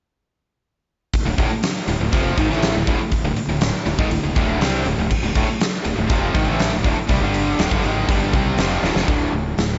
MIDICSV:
0, 0, Header, 1, 8, 480
1, 0, Start_track
1, 0, Tempo, 497100
1, 1092, Time_signature, 4, 2, 24, 8
1, 9445, End_track
2, 0, Start_track
2, 0, Title_t, "Distorted electric guitar"
2, 0, Program_c, 0, 30
2, 5874, Note_on_c, 0, 53, 107
2, 6113, Note_off_c, 0, 53, 0
2, 9445, End_track
3, 0, Start_track
3, 0, Title_t, "Overdriven electric guitar"
3, 0, Program_c, 1, 29
3, 1212, Note_on_c, 1, 38, 67
3, 1213, Note_on_c, 1, 45, 79
3, 1319, Note_off_c, 1, 38, 0
3, 1323, Note_off_c, 1, 45, 0
3, 1331, Note_on_c, 1, 38, 88
3, 1335, Note_on_c, 1, 45, 90
3, 1444, Note_off_c, 1, 38, 0
3, 1446, Note_off_c, 1, 45, 0
3, 1813, Note_on_c, 1, 38, 62
3, 1814, Note_on_c, 1, 45, 67
3, 1932, Note_off_c, 1, 38, 0
3, 1932, Note_off_c, 1, 45, 0
3, 1942, Note_on_c, 1, 38, 63
3, 1944, Note_on_c, 1, 45, 77
3, 2047, Note_off_c, 1, 38, 0
3, 2051, Note_on_c, 1, 41, 103
3, 2052, Note_off_c, 1, 45, 0
3, 2056, Note_on_c, 1, 48, 95
3, 2064, Note_on_c, 1, 53, 101
3, 2283, Note_off_c, 1, 41, 0
3, 2286, Note_off_c, 1, 48, 0
3, 2290, Note_off_c, 1, 53, 0
3, 2302, Note_on_c, 1, 44, 95
3, 2308, Note_on_c, 1, 51, 104
3, 2409, Note_off_c, 1, 44, 0
3, 2412, Note_off_c, 1, 51, 0
3, 2417, Note_on_c, 1, 45, 82
3, 2420, Note_on_c, 1, 52, 86
3, 2428, Note_on_c, 1, 57, 82
3, 2646, Note_off_c, 1, 45, 0
3, 2648, Note_off_c, 1, 52, 0
3, 2652, Note_off_c, 1, 57, 0
3, 2655, Note_on_c, 1, 38, 64
3, 2660, Note_on_c, 1, 45, 65
3, 2767, Note_off_c, 1, 38, 0
3, 2775, Note_off_c, 1, 45, 0
3, 2778, Note_on_c, 1, 38, 81
3, 2785, Note_on_c, 1, 45, 90
3, 2887, Note_off_c, 1, 38, 0
3, 2890, Note_off_c, 1, 45, 0
3, 3135, Note_on_c, 1, 38, 67
3, 3138, Note_on_c, 1, 45, 70
3, 3241, Note_off_c, 1, 38, 0
3, 3253, Note_off_c, 1, 45, 0
3, 3371, Note_on_c, 1, 38, 63
3, 3374, Note_on_c, 1, 45, 72
3, 3562, Note_off_c, 1, 38, 0
3, 3563, Note_off_c, 1, 45, 0
3, 3728, Note_on_c, 1, 38, 67
3, 3730, Note_on_c, 1, 45, 78
3, 3840, Note_off_c, 1, 38, 0
3, 3844, Note_on_c, 1, 44, 90
3, 3846, Note_off_c, 1, 45, 0
3, 3850, Note_on_c, 1, 51, 90
3, 3959, Note_off_c, 1, 44, 0
3, 3962, Note_off_c, 1, 51, 0
3, 3963, Note_on_c, 1, 38, 60
3, 3966, Note_on_c, 1, 45, 68
3, 4070, Note_off_c, 1, 38, 0
3, 4077, Note_off_c, 1, 45, 0
3, 4081, Note_on_c, 1, 38, 66
3, 4089, Note_on_c, 1, 45, 76
3, 4191, Note_off_c, 1, 38, 0
3, 4199, Note_off_c, 1, 45, 0
3, 4203, Note_on_c, 1, 38, 90
3, 4211, Note_on_c, 1, 45, 102
3, 4215, Note_on_c, 1, 50, 90
3, 4438, Note_off_c, 1, 38, 0
3, 4442, Note_off_c, 1, 45, 0
3, 4445, Note_off_c, 1, 50, 0
3, 4448, Note_on_c, 1, 48, 89
3, 4454, Note_on_c, 1, 55, 99
3, 4464, Note_on_c, 1, 60, 95
3, 4680, Note_off_c, 1, 48, 0
3, 4683, Note_off_c, 1, 55, 0
3, 4684, Note_on_c, 1, 38, 52
3, 4687, Note_on_c, 1, 45, 61
3, 4689, Note_off_c, 1, 60, 0
3, 4797, Note_off_c, 1, 38, 0
3, 4798, Note_off_c, 1, 45, 0
3, 4809, Note_on_c, 1, 38, 66
3, 4810, Note_on_c, 1, 45, 75
3, 4928, Note_off_c, 1, 38, 0
3, 4929, Note_off_c, 1, 45, 0
3, 5049, Note_on_c, 1, 38, 71
3, 5052, Note_on_c, 1, 45, 76
3, 5160, Note_off_c, 1, 38, 0
3, 5167, Note_off_c, 1, 45, 0
3, 5172, Note_on_c, 1, 38, 94
3, 5179, Note_on_c, 1, 45, 95
3, 5283, Note_off_c, 1, 38, 0
3, 5286, Note_off_c, 1, 45, 0
3, 5650, Note_on_c, 1, 38, 61
3, 5653, Note_on_c, 1, 45, 77
3, 5756, Note_off_c, 1, 38, 0
3, 5763, Note_off_c, 1, 45, 0
3, 5768, Note_on_c, 1, 38, 65
3, 5775, Note_on_c, 1, 45, 64
3, 5887, Note_off_c, 1, 38, 0
3, 5891, Note_off_c, 1, 45, 0
3, 5896, Note_on_c, 1, 41, 91
3, 5903, Note_on_c, 1, 48, 101
3, 5913, Note_on_c, 1, 53, 99
3, 6123, Note_off_c, 1, 41, 0
3, 6127, Note_on_c, 1, 44, 81
3, 6128, Note_off_c, 1, 48, 0
3, 6133, Note_off_c, 1, 53, 0
3, 6140, Note_on_c, 1, 51, 99
3, 6240, Note_off_c, 1, 44, 0
3, 6244, Note_on_c, 1, 45, 79
3, 6246, Note_off_c, 1, 51, 0
3, 6252, Note_on_c, 1, 52, 87
3, 6263, Note_on_c, 1, 57, 81
3, 6479, Note_off_c, 1, 45, 0
3, 6483, Note_off_c, 1, 52, 0
3, 6488, Note_off_c, 1, 57, 0
3, 6497, Note_on_c, 1, 38, 67
3, 6501, Note_on_c, 1, 45, 68
3, 6604, Note_off_c, 1, 38, 0
3, 6612, Note_off_c, 1, 45, 0
3, 6615, Note_on_c, 1, 38, 78
3, 6624, Note_on_c, 1, 45, 89
3, 6722, Note_off_c, 1, 38, 0
3, 6728, Note_off_c, 1, 45, 0
3, 6857, Note_on_c, 1, 48, 81
3, 6866, Note_on_c, 1, 55, 109
3, 6965, Note_off_c, 1, 48, 0
3, 6969, Note_off_c, 1, 55, 0
3, 6980, Note_on_c, 1, 43, 89
3, 6983, Note_on_c, 1, 50, 97
3, 6992, Note_on_c, 1, 55, 114
3, 7327, Note_off_c, 1, 43, 0
3, 7328, Note_off_c, 1, 50, 0
3, 7333, Note_off_c, 1, 55, 0
3, 7339, Note_on_c, 1, 38, 95
3, 7350, Note_on_c, 1, 45, 94
3, 7446, Note_off_c, 1, 38, 0
3, 7452, Note_off_c, 1, 45, 0
3, 7462, Note_on_c, 1, 43, 89
3, 7470, Note_on_c, 1, 50, 93
3, 7568, Note_off_c, 1, 43, 0
3, 7572, Note_off_c, 1, 50, 0
3, 7574, Note_on_c, 1, 44, 88
3, 7579, Note_on_c, 1, 51, 88
3, 7591, Note_on_c, 1, 56, 85
3, 7804, Note_off_c, 1, 44, 0
3, 7806, Note_off_c, 1, 51, 0
3, 7812, Note_off_c, 1, 56, 0
3, 7818, Note_on_c, 1, 43, 94
3, 7827, Note_on_c, 1, 50, 98
3, 7832, Note_on_c, 1, 55, 98
3, 8046, Note_off_c, 1, 43, 0
3, 8050, Note_off_c, 1, 50, 0
3, 8053, Note_off_c, 1, 55, 0
3, 8056, Note_on_c, 1, 48, 92
3, 8065, Note_on_c, 1, 55, 93
3, 8070, Note_on_c, 1, 60, 99
3, 8285, Note_off_c, 1, 48, 0
3, 8290, Note_off_c, 1, 55, 0
3, 8292, Note_off_c, 1, 60, 0
3, 8292, Note_on_c, 1, 41, 88
3, 8300, Note_on_c, 1, 48, 91
3, 8303, Note_on_c, 1, 53, 102
3, 8524, Note_off_c, 1, 41, 0
3, 8527, Note_off_c, 1, 48, 0
3, 8529, Note_off_c, 1, 53, 0
3, 8537, Note_on_c, 1, 38, 79
3, 8540, Note_on_c, 1, 45, 83
3, 8646, Note_off_c, 1, 38, 0
3, 8647, Note_off_c, 1, 45, 0
3, 8650, Note_on_c, 1, 41, 83
3, 8664, Note_on_c, 1, 48, 89
3, 8763, Note_off_c, 1, 41, 0
3, 8770, Note_off_c, 1, 48, 0
3, 8771, Note_on_c, 1, 38, 85
3, 8778, Note_on_c, 1, 45, 87
3, 8785, Note_on_c, 1, 50, 86
3, 8996, Note_off_c, 1, 38, 0
3, 9000, Note_off_c, 1, 45, 0
3, 9003, Note_off_c, 1, 50, 0
3, 9018, Note_on_c, 1, 38, 67
3, 9022, Note_on_c, 1, 45, 73
3, 9230, Note_off_c, 1, 38, 0
3, 9232, Note_off_c, 1, 45, 0
3, 9257, Note_on_c, 1, 45, 74
3, 9258, Note_on_c, 1, 38, 64
3, 9445, Note_off_c, 1, 38, 0
3, 9445, Note_off_c, 1, 45, 0
3, 9445, End_track
4, 0, Start_track
4, 0, Title_t, "Fingered electric bass"
4, 0, Program_c, 2, 33
4, 1211, Note_on_c, 2, 26, 77
4, 1323, Note_off_c, 2, 26, 0
4, 1336, Note_on_c, 2, 26, 97
4, 1446, Note_off_c, 2, 26, 0
4, 1812, Note_on_c, 2, 26, 81
4, 1923, Note_off_c, 2, 26, 0
4, 1937, Note_on_c, 2, 26, 83
4, 2046, Note_off_c, 2, 26, 0
4, 2056, Note_on_c, 2, 29, 93
4, 2277, Note_off_c, 2, 29, 0
4, 2296, Note_on_c, 2, 32, 85
4, 2405, Note_off_c, 2, 32, 0
4, 2417, Note_on_c, 2, 33, 86
4, 2637, Note_off_c, 2, 33, 0
4, 2653, Note_on_c, 2, 26, 76
4, 2763, Note_off_c, 2, 26, 0
4, 2776, Note_on_c, 2, 26, 92
4, 2885, Note_off_c, 2, 26, 0
4, 3129, Note_on_c, 2, 26, 86
4, 3241, Note_off_c, 2, 26, 0
4, 3360, Note_on_c, 2, 26, 69
4, 3587, Note_off_c, 2, 26, 0
4, 3723, Note_on_c, 2, 26, 82
4, 3837, Note_off_c, 2, 26, 0
4, 3849, Note_on_c, 2, 32, 85
4, 3952, Note_off_c, 2, 32, 0
4, 3958, Note_on_c, 2, 26, 76
4, 4074, Note_off_c, 2, 26, 0
4, 4084, Note_on_c, 2, 26, 69
4, 4197, Note_off_c, 2, 26, 0
4, 4210, Note_on_c, 2, 26, 88
4, 4432, Note_off_c, 2, 26, 0
4, 4437, Note_on_c, 2, 36, 86
4, 4665, Note_off_c, 2, 36, 0
4, 4686, Note_on_c, 2, 26, 84
4, 4798, Note_off_c, 2, 26, 0
4, 4805, Note_on_c, 2, 26, 83
4, 4918, Note_off_c, 2, 26, 0
4, 5047, Note_on_c, 2, 26, 81
4, 5159, Note_off_c, 2, 26, 0
4, 5174, Note_on_c, 2, 26, 93
4, 5283, Note_off_c, 2, 26, 0
4, 5654, Note_on_c, 2, 26, 82
4, 5763, Note_off_c, 2, 26, 0
4, 5772, Note_on_c, 2, 26, 89
4, 5881, Note_off_c, 2, 26, 0
4, 5890, Note_on_c, 2, 29, 84
4, 6112, Note_off_c, 2, 29, 0
4, 6131, Note_on_c, 2, 32, 88
4, 6241, Note_off_c, 2, 32, 0
4, 6252, Note_on_c, 2, 33, 102
4, 6473, Note_off_c, 2, 33, 0
4, 6496, Note_on_c, 2, 26, 73
4, 6604, Note_off_c, 2, 26, 0
4, 6609, Note_on_c, 2, 26, 96
4, 6720, Note_off_c, 2, 26, 0
4, 6849, Note_on_c, 2, 36, 87
4, 6960, Note_off_c, 2, 36, 0
4, 6968, Note_on_c, 2, 31, 88
4, 7303, Note_off_c, 2, 31, 0
4, 7325, Note_on_c, 2, 26, 97
4, 7438, Note_off_c, 2, 26, 0
4, 7448, Note_on_c, 2, 31, 87
4, 7560, Note_off_c, 2, 31, 0
4, 7570, Note_on_c, 2, 32, 89
4, 7792, Note_off_c, 2, 32, 0
4, 7811, Note_on_c, 2, 31, 79
4, 8033, Note_off_c, 2, 31, 0
4, 8050, Note_on_c, 2, 36, 82
4, 8273, Note_off_c, 2, 36, 0
4, 8282, Note_on_c, 2, 29, 85
4, 8509, Note_off_c, 2, 29, 0
4, 8520, Note_on_c, 2, 26, 88
4, 8636, Note_off_c, 2, 26, 0
4, 8641, Note_on_c, 2, 29, 93
4, 8757, Note_off_c, 2, 29, 0
4, 8768, Note_on_c, 2, 26, 84
4, 8988, Note_off_c, 2, 26, 0
4, 9001, Note_on_c, 2, 26, 82
4, 9225, Note_off_c, 2, 26, 0
4, 9249, Note_on_c, 2, 26, 89
4, 9445, Note_off_c, 2, 26, 0
4, 9445, End_track
5, 0, Start_track
5, 0, Title_t, "Muted distorted electric guitar strokes"
5, 1457, Note_on_c, 9, 29, 55
5, 1554, Note_off_c, 9, 29, 0
5, 2897, Note_on_c, 9, 29, 63
5, 2993, Note_off_c, 9, 29, 0
5, 3252, Note_on_c, 9, 29, 60
5, 3349, Note_off_c, 9, 29, 0
5, 5280, Note_on_c, 9, 29, 57
5, 5377, Note_off_c, 9, 29, 0
5, 6714, Note_on_c, 9, 29, 57
5, 6810, Note_off_c, 9, 29, 0
5, 9445, End_track
6, 0, Start_track
6, 0, Title_t, "Muted fingered electric bass strokes"
6, 1451, Note_on_c, 9, 29, 38
6, 1547, Note_off_c, 9, 29, 0
6, 2897, Note_on_c, 9, 29, 44
6, 2993, Note_off_c, 9, 29, 0
6, 3249, Note_on_c, 9, 29, 40
6, 3346, Note_off_c, 9, 29, 0
6, 5291, Note_on_c, 9, 29, 42
6, 5388, Note_off_c, 9, 29, 0
6, 6736, Note_on_c, 9, 29, 42
6, 6833, Note_off_c, 9, 29, 0
6, 9445, End_track
7, 0, Start_track
7, 0, Title_t, "Muted overdriven electric guitar strokes"
7, 1456, Note_on_c, 9, 29, 58
7, 1553, Note_off_c, 9, 29, 0
7, 2901, Note_on_c, 9, 29, 54
7, 2997, Note_off_c, 9, 29, 0
7, 3253, Note_on_c, 9, 29, 64
7, 3350, Note_off_c, 9, 29, 0
7, 5295, Note_on_c, 9, 29, 57
7, 5392, Note_off_c, 9, 29, 0
7, 6733, Note_on_c, 9, 29, 55
7, 6830, Note_off_c, 9, 29, 0
7, 9445, End_track
8, 0, Start_track
8, 0, Title_t, "Drums"
8, 1096, Note_on_c, 9, 46, 77
8, 1097, Note_on_c, 9, 36, 88
8, 1193, Note_off_c, 9, 46, 0
8, 1194, Note_off_c, 9, 36, 0
8, 1334, Note_on_c, 9, 46, 63
8, 1336, Note_on_c, 9, 36, 104
8, 1430, Note_off_c, 9, 46, 0
8, 1432, Note_off_c, 9, 36, 0
8, 1573, Note_on_c, 9, 46, 79
8, 1581, Note_on_c, 9, 38, 115
8, 1670, Note_off_c, 9, 46, 0
8, 1678, Note_off_c, 9, 38, 0
8, 1813, Note_on_c, 9, 46, 65
8, 1910, Note_off_c, 9, 46, 0
8, 2055, Note_on_c, 9, 36, 111
8, 2055, Note_on_c, 9, 46, 79
8, 2151, Note_off_c, 9, 46, 0
8, 2152, Note_off_c, 9, 36, 0
8, 2295, Note_on_c, 9, 36, 109
8, 2295, Note_on_c, 9, 46, 62
8, 2391, Note_off_c, 9, 46, 0
8, 2392, Note_off_c, 9, 36, 0
8, 2425, Note_on_c, 9, 38, 33
8, 2522, Note_off_c, 9, 38, 0
8, 2535, Note_on_c, 9, 46, 75
8, 2543, Note_on_c, 9, 38, 109
8, 2632, Note_off_c, 9, 46, 0
8, 2639, Note_off_c, 9, 38, 0
8, 2774, Note_on_c, 9, 36, 97
8, 2775, Note_on_c, 9, 46, 59
8, 2871, Note_off_c, 9, 36, 0
8, 2871, Note_off_c, 9, 46, 0
8, 3009, Note_on_c, 9, 46, 78
8, 3012, Note_on_c, 9, 36, 88
8, 3105, Note_off_c, 9, 46, 0
8, 3109, Note_off_c, 9, 36, 0
8, 3249, Note_on_c, 9, 46, 61
8, 3346, Note_off_c, 9, 46, 0
8, 3486, Note_on_c, 9, 46, 86
8, 3493, Note_on_c, 9, 38, 117
8, 3582, Note_off_c, 9, 46, 0
8, 3590, Note_off_c, 9, 38, 0
8, 3729, Note_on_c, 9, 46, 60
8, 3826, Note_off_c, 9, 46, 0
8, 3850, Note_on_c, 9, 36, 106
8, 3947, Note_off_c, 9, 36, 0
8, 3971, Note_on_c, 9, 46, 77
8, 4068, Note_off_c, 9, 46, 0
8, 4212, Note_on_c, 9, 36, 110
8, 4213, Note_on_c, 9, 46, 55
8, 4309, Note_off_c, 9, 36, 0
8, 4310, Note_off_c, 9, 46, 0
8, 4454, Note_on_c, 9, 46, 77
8, 4462, Note_on_c, 9, 38, 104
8, 4550, Note_off_c, 9, 46, 0
8, 4558, Note_off_c, 9, 38, 0
8, 4693, Note_on_c, 9, 46, 52
8, 4789, Note_off_c, 9, 46, 0
8, 4929, Note_on_c, 9, 49, 82
8, 4931, Note_on_c, 9, 36, 87
8, 5026, Note_off_c, 9, 49, 0
8, 5028, Note_off_c, 9, 36, 0
8, 5171, Note_on_c, 9, 36, 113
8, 5171, Note_on_c, 9, 46, 59
8, 5268, Note_off_c, 9, 36, 0
8, 5268, Note_off_c, 9, 46, 0
8, 5414, Note_on_c, 9, 46, 80
8, 5422, Note_on_c, 9, 38, 119
8, 5510, Note_off_c, 9, 46, 0
8, 5518, Note_off_c, 9, 38, 0
8, 5650, Note_on_c, 9, 46, 63
8, 5746, Note_off_c, 9, 46, 0
8, 5886, Note_on_c, 9, 46, 82
8, 5889, Note_on_c, 9, 36, 106
8, 5982, Note_off_c, 9, 46, 0
8, 5986, Note_off_c, 9, 36, 0
8, 6128, Note_on_c, 9, 46, 64
8, 6129, Note_on_c, 9, 36, 109
8, 6225, Note_off_c, 9, 46, 0
8, 6226, Note_off_c, 9, 36, 0
8, 6369, Note_on_c, 9, 46, 83
8, 6376, Note_on_c, 9, 38, 111
8, 6465, Note_off_c, 9, 46, 0
8, 6473, Note_off_c, 9, 38, 0
8, 6608, Note_on_c, 9, 46, 64
8, 6609, Note_on_c, 9, 36, 98
8, 6704, Note_off_c, 9, 46, 0
8, 6706, Note_off_c, 9, 36, 0
8, 6845, Note_on_c, 9, 46, 72
8, 6848, Note_on_c, 9, 36, 97
8, 6941, Note_off_c, 9, 46, 0
8, 6945, Note_off_c, 9, 36, 0
8, 7089, Note_on_c, 9, 46, 67
8, 7186, Note_off_c, 9, 46, 0
8, 7329, Note_on_c, 9, 46, 85
8, 7336, Note_on_c, 9, 38, 111
8, 7425, Note_off_c, 9, 46, 0
8, 7433, Note_off_c, 9, 38, 0
8, 7449, Note_on_c, 9, 36, 100
8, 7545, Note_off_c, 9, 36, 0
8, 7568, Note_on_c, 9, 46, 59
8, 7664, Note_off_c, 9, 46, 0
8, 7809, Note_on_c, 9, 36, 107
8, 7810, Note_on_c, 9, 46, 84
8, 7906, Note_off_c, 9, 36, 0
8, 7907, Note_off_c, 9, 46, 0
8, 8048, Note_on_c, 9, 46, 58
8, 8049, Note_on_c, 9, 36, 103
8, 8145, Note_off_c, 9, 36, 0
8, 8145, Note_off_c, 9, 46, 0
8, 8283, Note_on_c, 9, 46, 76
8, 8291, Note_on_c, 9, 38, 109
8, 8380, Note_off_c, 9, 46, 0
8, 8388, Note_off_c, 9, 38, 0
8, 8533, Note_on_c, 9, 38, 60
8, 8630, Note_off_c, 9, 38, 0
8, 8654, Note_on_c, 9, 38, 90
8, 8750, Note_off_c, 9, 38, 0
8, 8769, Note_on_c, 9, 36, 100
8, 8771, Note_on_c, 9, 46, 49
8, 8865, Note_off_c, 9, 36, 0
8, 8867, Note_off_c, 9, 46, 0
8, 9250, Note_on_c, 9, 46, 50
8, 9258, Note_on_c, 9, 38, 99
8, 9346, Note_off_c, 9, 46, 0
8, 9354, Note_off_c, 9, 38, 0
8, 9445, End_track
0, 0, End_of_file